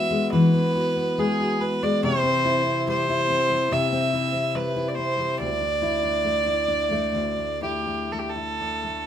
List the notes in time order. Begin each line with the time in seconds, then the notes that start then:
Already playing: E3 B3 F#4 E5
0.11 G#3
0.32 E3 B4
0.54 B3
0.75 F#4
0.96 B3
1.18 G#3 G#4
1.40 F#4
1.60 B3 B4
1.83 G#3 D5
2.03 C3 C5
2.23 C4
2.45 E4
2.66 C4
2.87 G3 C5
3.09 E4
3.30 C4
3.52 G3
3.71 C3 E5
3.92 C4
4.13 E4
4.34 C4
4.55 G3 B4
4.76 E4
4.88 D5
4.95 C4 C5
5.19 G3
5.38 D2 D5
5.60 D4
5.82 E4
6.03 D4
6.25 A3
6.46 E4
6.68 D4
6.91 A3
7.14 D2
7.37 D4
7.62 E4 G4
7.86 D4
8.12 A3 A4
8.19 G4
8.29 A4
8.36 E4
8.61 D4
8.84 A3